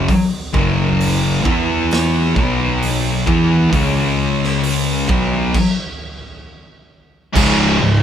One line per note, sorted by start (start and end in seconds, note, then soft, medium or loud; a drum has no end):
0.08 kick loud
0.08 open hi-hat medium
0.53 1.41 F#1 loud
0.53 1.43 F#2 medium
0.53 1.43 C#3 loud
0.53 1.44 F#3 medium
0.53 kick loud
1.00 open hi-hat medium
1.44 2.32 E2 medium
1.44 2.36 E3 medium
1.44 2.34 B3 loud
1.44 2.34 E4 loud
1.44 kick loud
1.91 snare loud
1.91 open hi-hat medium
2.35 3.23 B1 medium
2.35 3.25 B2 medium
2.35 3.25 F#3 loud
2.35 3.26 B3 loud
2.35 kick loud
2.83 open hi-hat medium
3.27 3.69 E2 medium
3.27 3.72 E3 loud
3.27 3.73 B3 medium
3.27 3.74 E4 loud
3.27 kick loud
3.72 5.05 C#2 loud
3.72 5.07 C#3 loud
3.72 5.07 G#3 loud
3.72 5.08 C#4 loud
3.72 kick loud
3.72 open hi-hat medium
4.44 snare soft
4.63 open hi-hat medium
5.09 5.51 B1 medium
5.09 5.53 B2 medium
5.09 5.53 F#3 medium
5.09 5.53 B3 loud
5.09 kick loud
5.54 kick loud
5.54 crash medium
7.36 7.77 C#1 loud
7.36 7.79 C#2 loud
7.36 7.79 G#2 loud
7.36 7.79 C#3 loud
7.36 kick loud
7.36 crash loud
7.36 crash medium
7.81 8.03 C#1 medium
7.81 8.03 C#2 medium
7.81 8.03 G#2 medium